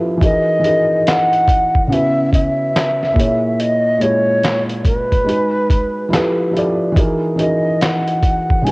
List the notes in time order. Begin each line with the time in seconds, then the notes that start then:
Already playing: F3 E4 G4 A4 B4
0.17 E3 D#4 F#4
0.21 G#4 A#4 D#5, kick, closed hi-hat
0.60 E3 D#4 F#4
0.64 G#4 A#4, closed hi-hat
1.07 F#5, snare, clap, closed hi-hat
1.33 closed hi-hat
1.48 kick, closed hi-hat
1.75 kick
1.87 C#3 B3 C#4 E4 F#5
1.92 F#4 B4 E5, closed hi-hat
2.33 E5, kick, closed hi-hat
2.76 snare, clap, closed hi-hat
3.03 snare
3.13 A#2 A#3 E4, kick
3.18 G#4 C#5, closed hi-hat
3.60 D#5, closed hi-hat
3.98 A#2 G#3 E4 C#5, closed hi-hat
4.03 G#4 C#5
4.43 snare, clap, closed hi-hat
4.69 closed hi-hat
4.85 B4, kick, closed hi-hat
5.12 kick, closed hi-hat
5.24 G#3 D#4 F#4
5.29 G#4 B4, closed hi-hat
5.70 kick, closed hi-hat
6.09 F3 E4 G4
6.13 A4 B4, snare, clap, closed hi-hat
6.51 F3 E4 G4
6.56 A4 D5, closed hi-hat
6.92 E3 D#4
6.96 F#4 G#4 A#4, kick, closed hi-hat
7.36 E3 D#4 F#4, closed hi-hat
7.40 G#4 A#4 D#5
7.81 F#5, snare, clap, closed hi-hat
8.08 closed hi-hat
8.23 kick, closed hi-hat
8.50 kick
8.62 C#3 G#3 D#4 G#5
8.66 E4 F#4, closed hi-hat